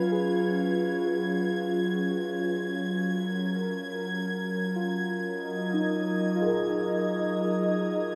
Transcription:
0, 0, Header, 1, 4, 480
1, 0, Start_track
1, 0, Key_signature, 6, "major"
1, 0, Tempo, 500000
1, 7824, End_track
2, 0, Start_track
2, 0, Title_t, "Violin section"
2, 0, Program_c, 0, 48
2, 0, Note_on_c, 0, 92, 73
2, 7824, Note_off_c, 0, 92, 0
2, 7824, End_track
3, 0, Start_track
3, 0, Title_t, "Synth keys"
3, 0, Program_c, 1, 88
3, 0, Control_c, 1, 64, 127
3, 113, Note_on_c, 1, 68, 65
3, 1385, Note_off_c, 1, 68, 0
3, 2486, Control_c, 1, 64, 0
3, 2628, Control_c, 1, 64, 127
3, 4568, Note_on_c, 1, 65, 69
3, 5506, Note_on_c, 1, 63, 71
3, 5846, Note_off_c, 1, 65, 0
3, 6106, Note_on_c, 1, 65, 74
3, 6158, Note_on_c, 1, 68, 56
3, 6207, Note_on_c, 1, 70, 54
3, 6787, Note_off_c, 1, 63, 0
3, 7394, Note_off_c, 1, 65, 0
3, 7420, Note_off_c, 1, 68, 0
3, 7445, Note_off_c, 1, 70, 0
3, 7824, End_track
4, 0, Start_track
4, 0, Title_t, "Analog synth pad"
4, 0, Program_c, 2, 89
4, 0, Note_on_c, 2, 54, 80
4, 0, Note_on_c, 2, 61, 76
4, 0, Note_on_c, 2, 65, 85
4, 0, Note_on_c, 2, 71, 69
4, 2469, Note_off_c, 2, 54, 0
4, 2475, Note_off_c, 2, 71, 0
4, 2477, Note_off_c, 2, 65, 0
4, 2480, Note_on_c, 2, 54, 89
4, 2974, Note_on_c, 2, 70, 75
4, 5102, Note_on_c, 2, 75, 98
4, 5312, Note_off_c, 2, 61, 0
4, 7824, Note_off_c, 2, 54, 0
4, 7824, Note_off_c, 2, 70, 0
4, 7824, Note_off_c, 2, 75, 0
4, 7824, End_track
0, 0, End_of_file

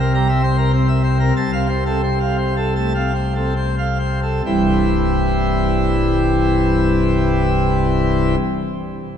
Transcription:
0, 0, Header, 1, 2, 480
1, 0, Start_track
1, 0, Key_signature, 0, "major"
1, 0, Tempo, 587659
1, 596, Tempo, 647948
1, 1060, Time_signature, 4, 2, 24, 8
1, 1556, Tempo, 726392
1, 2036, Tempo, 801068
1, 2516, Tempo, 896861
1, 2996, Tempo, 934579
1, 5423, End_track
2, 0, Start_track
2, 0, Title_t, "Pipe organ"
2, 0, Program_c, 0, 19
2, 0, Note_on_c, 0, 36, 112
2, 0, Note_on_c, 0, 48, 124
2, 0, Note_on_c, 0, 70, 77
2, 103, Note_off_c, 0, 70, 0
2, 118, Note_on_c, 0, 55, 91
2, 119, Note_on_c, 0, 82, 100
2, 222, Note_off_c, 0, 55, 0
2, 223, Note_off_c, 0, 82, 0
2, 232, Note_on_c, 0, 76, 93
2, 235, Note_on_c, 0, 60, 90
2, 339, Note_off_c, 0, 76, 0
2, 341, Note_off_c, 0, 60, 0
2, 356, Note_on_c, 0, 72, 96
2, 462, Note_off_c, 0, 72, 0
2, 475, Note_on_c, 0, 70, 83
2, 476, Note_on_c, 0, 60, 86
2, 584, Note_off_c, 0, 60, 0
2, 584, Note_off_c, 0, 70, 0
2, 600, Note_on_c, 0, 72, 112
2, 699, Note_off_c, 0, 72, 0
2, 708, Note_on_c, 0, 76, 92
2, 811, Note_off_c, 0, 76, 0
2, 822, Note_on_c, 0, 72, 82
2, 927, Note_off_c, 0, 72, 0
2, 944, Note_on_c, 0, 70, 91
2, 1033, Note_off_c, 0, 36, 0
2, 1033, Note_off_c, 0, 48, 0
2, 1044, Note_off_c, 0, 70, 0
2, 1067, Note_on_c, 0, 36, 110
2, 1067, Note_on_c, 0, 48, 111
2, 1068, Note_on_c, 0, 81, 127
2, 1172, Note_off_c, 0, 81, 0
2, 1186, Note_on_c, 0, 60, 90
2, 1187, Note_on_c, 0, 77, 96
2, 1294, Note_off_c, 0, 60, 0
2, 1294, Note_off_c, 0, 77, 0
2, 1307, Note_on_c, 0, 72, 93
2, 1418, Note_off_c, 0, 72, 0
2, 1435, Note_on_c, 0, 60, 76
2, 1435, Note_on_c, 0, 69, 83
2, 1546, Note_off_c, 0, 60, 0
2, 1546, Note_off_c, 0, 69, 0
2, 1560, Note_on_c, 0, 72, 89
2, 1662, Note_off_c, 0, 72, 0
2, 1673, Note_on_c, 0, 77, 84
2, 1778, Note_off_c, 0, 77, 0
2, 1791, Note_on_c, 0, 72, 84
2, 1899, Note_off_c, 0, 72, 0
2, 1915, Note_on_c, 0, 69, 78
2, 2025, Note_off_c, 0, 69, 0
2, 2041, Note_on_c, 0, 57, 78
2, 2041, Note_on_c, 0, 81, 84
2, 2142, Note_off_c, 0, 57, 0
2, 2142, Note_off_c, 0, 81, 0
2, 2153, Note_on_c, 0, 60, 75
2, 2153, Note_on_c, 0, 77, 88
2, 2258, Note_off_c, 0, 60, 0
2, 2258, Note_off_c, 0, 77, 0
2, 2274, Note_on_c, 0, 72, 75
2, 2381, Note_off_c, 0, 72, 0
2, 2396, Note_on_c, 0, 60, 63
2, 2398, Note_on_c, 0, 69, 73
2, 2506, Note_off_c, 0, 60, 0
2, 2506, Note_off_c, 0, 69, 0
2, 2523, Note_on_c, 0, 72, 90
2, 2623, Note_off_c, 0, 72, 0
2, 2639, Note_on_c, 0, 77, 76
2, 2742, Note_off_c, 0, 77, 0
2, 2753, Note_on_c, 0, 72, 79
2, 2861, Note_off_c, 0, 72, 0
2, 2877, Note_on_c, 0, 69, 74
2, 2977, Note_off_c, 0, 36, 0
2, 2977, Note_off_c, 0, 48, 0
2, 2980, Note_off_c, 0, 69, 0
2, 3000, Note_on_c, 0, 43, 70
2, 3001, Note_on_c, 0, 24, 80
2, 3001, Note_on_c, 0, 36, 82
2, 3001, Note_on_c, 0, 55, 70
2, 3002, Note_on_c, 0, 52, 67
2, 3002, Note_on_c, 0, 60, 70
2, 3002, Note_on_c, 0, 64, 66
2, 4999, Note_off_c, 0, 43, 0
2, 5000, Note_off_c, 0, 24, 0
2, 5000, Note_off_c, 0, 36, 0
2, 5000, Note_off_c, 0, 55, 0
2, 5000, Note_off_c, 0, 64, 0
2, 5001, Note_off_c, 0, 52, 0
2, 5001, Note_off_c, 0, 60, 0
2, 5423, End_track
0, 0, End_of_file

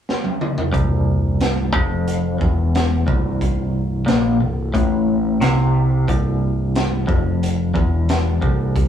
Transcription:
0, 0, Header, 1, 4, 480
1, 0, Start_track
1, 0, Tempo, 668151
1, 534, Time_signature, 4, 2, 24, 8
1, 6381, End_track
2, 0, Start_track
2, 0, Title_t, "Clean electric guitar"
2, 0, Program_c, 0, 27
2, 521, Note_on_c, 0, 36, 114
2, 1238, Note_off_c, 0, 36, 0
2, 1238, Note_on_c, 0, 41, 93
2, 1716, Note_off_c, 0, 41, 0
2, 1716, Note_on_c, 0, 40, 92
2, 2197, Note_off_c, 0, 40, 0
2, 2203, Note_on_c, 0, 36, 92
2, 2915, Note_off_c, 0, 36, 0
2, 2917, Note_on_c, 0, 46, 90
2, 3158, Note_off_c, 0, 46, 0
2, 3164, Note_on_c, 0, 36, 72
2, 3360, Note_off_c, 0, 36, 0
2, 3403, Note_on_c, 0, 45, 93
2, 3881, Note_off_c, 0, 45, 0
2, 3889, Note_on_c, 0, 48, 100
2, 4364, Note_off_c, 0, 48, 0
2, 4370, Note_on_c, 0, 36, 115
2, 5078, Note_off_c, 0, 36, 0
2, 5081, Note_on_c, 0, 41, 94
2, 5558, Note_off_c, 0, 41, 0
2, 5561, Note_on_c, 0, 40, 97
2, 6042, Note_off_c, 0, 40, 0
2, 6045, Note_on_c, 0, 36, 89
2, 6381, Note_off_c, 0, 36, 0
2, 6381, End_track
3, 0, Start_track
3, 0, Title_t, "Picked electric bass"
3, 0, Program_c, 1, 34
3, 535, Note_on_c, 1, 24, 88
3, 1225, Note_off_c, 1, 24, 0
3, 1253, Note_on_c, 1, 29, 86
3, 1704, Note_off_c, 1, 29, 0
3, 1731, Note_on_c, 1, 28, 90
3, 2183, Note_off_c, 1, 28, 0
3, 2214, Note_on_c, 1, 24, 84
3, 2905, Note_off_c, 1, 24, 0
3, 2936, Note_on_c, 1, 34, 103
3, 3157, Note_off_c, 1, 34, 0
3, 3174, Note_on_c, 1, 24, 74
3, 3396, Note_off_c, 1, 24, 0
3, 3410, Note_on_c, 1, 33, 89
3, 3863, Note_off_c, 1, 33, 0
3, 3890, Note_on_c, 1, 36, 108
3, 4343, Note_off_c, 1, 36, 0
3, 4374, Note_on_c, 1, 24, 86
3, 5066, Note_off_c, 1, 24, 0
3, 5091, Note_on_c, 1, 29, 89
3, 5545, Note_off_c, 1, 29, 0
3, 5572, Note_on_c, 1, 28, 91
3, 6026, Note_off_c, 1, 28, 0
3, 6053, Note_on_c, 1, 24, 74
3, 6381, Note_off_c, 1, 24, 0
3, 6381, End_track
4, 0, Start_track
4, 0, Title_t, "Drums"
4, 64, Note_on_c, 9, 38, 64
4, 136, Note_off_c, 9, 38, 0
4, 174, Note_on_c, 9, 48, 70
4, 246, Note_off_c, 9, 48, 0
4, 295, Note_on_c, 9, 47, 96
4, 367, Note_off_c, 9, 47, 0
4, 415, Note_on_c, 9, 43, 104
4, 487, Note_off_c, 9, 43, 0
4, 530, Note_on_c, 9, 36, 103
4, 531, Note_on_c, 9, 42, 62
4, 602, Note_off_c, 9, 36, 0
4, 603, Note_off_c, 9, 42, 0
4, 1009, Note_on_c, 9, 42, 70
4, 1015, Note_on_c, 9, 38, 109
4, 1081, Note_off_c, 9, 42, 0
4, 1087, Note_off_c, 9, 38, 0
4, 1250, Note_on_c, 9, 36, 107
4, 1322, Note_off_c, 9, 36, 0
4, 1491, Note_on_c, 9, 42, 68
4, 1563, Note_off_c, 9, 42, 0
4, 1731, Note_on_c, 9, 36, 95
4, 1803, Note_off_c, 9, 36, 0
4, 1974, Note_on_c, 9, 42, 72
4, 1981, Note_on_c, 9, 38, 114
4, 2046, Note_off_c, 9, 42, 0
4, 2053, Note_off_c, 9, 38, 0
4, 2212, Note_on_c, 9, 36, 108
4, 2284, Note_off_c, 9, 36, 0
4, 2452, Note_on_c, 9, 36, 90
4, 2455, Note_on_c, 9, 42, 70
4, 2523, Note_off_c, 9, 36, 0
4, 2526, Note_off_c, 9, 42, 0
4, 2929, Note_on_c, 9, 42, 63
4, 2936, Note_on_c, 9, 38, 101
4, 3001, Note_off_c, 9, 42, 0
4, 3008, Note_off_c, 9, 38, 0
4, 3410, Note_on_c, 9, 36, 101
4, 3412, Note_on_c, 9, 42, 68
4, 3482, Note_off_c, 9, 36, 0
4, 3484, Note_off_c, 9, 42, 0
4, 3890, Note_on_c, 9, 42, 72
4, 3897, Note_on_c, 9, 38, 108
4, 3962, Note_off_c, 9, 42, 0
4, 3969, Note_off_c, 9, 38, 0
4, 4369, Note_on_c, 9, 36, 95
4, 4373, Note_on_c, 9, 42, 63
4, 4441, Note_off_c, 9, 36, 0
4, 4445, Note_off_c, 9, 42, 0
4, 4852, Note_on_c, 9, 42, 64
4, 4858, Note_on_c, 9, 38, 115
4, 4924, Note_off_c, 9, 42, 0
4, 4930, Note_off_c, 9, 38, 0
4, 5091, Note_on_c, 9, 36, 111
4, 5163, Note_off_c, 9, 36, 0
4, 5338, Note_on_c, 9, 42, 73
4, 5410, Note_off_c, 9, 42, 0
4, 5572, Note_on_c, 9, 36, 101
4, 5644, Note_off_c, 9, 36, 0
4, 5811, Note_on_c, 9, 42, 83
4, 5818, Note_on_c, 9, 38, 115
4, 5883, Note_off_c, 9, 42, 0
4, 5890, Note_off_c, 9, 38, 0
4, 6050, Note_on_c, 9, 36, 94
4, 6122, Note_off_c, 9, 36, 0
4, 6290, Note_on_c, 9, 36, 106
4, 6292, Note_on_c, 9, 42, 65
4, 6362, Note_off_c, 9, 36, 0
4, 6364, Note_off_c, 9, 42, 0
4, 6381, End_track
0, 0, End_of_file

